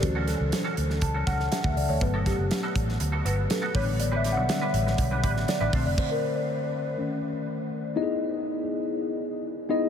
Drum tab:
CC |----------------|----------------|----------------|x---------------|
HH |x-x-x-x-x-x-x-o-|x-x-x-x-x-x-x-o-|x-x-x-x-x-x-x-o-|----------------|
SD |--o-o--o--ooo---|--o-o--o----o---|--o-o--o---oo---|----------------|
BD |o-------o-o--o--|o-o---o-------o-|--------o-o---o-|o---------------|

CC |----------------|
HH |----------------|
SD |----------------|
BD |----------------|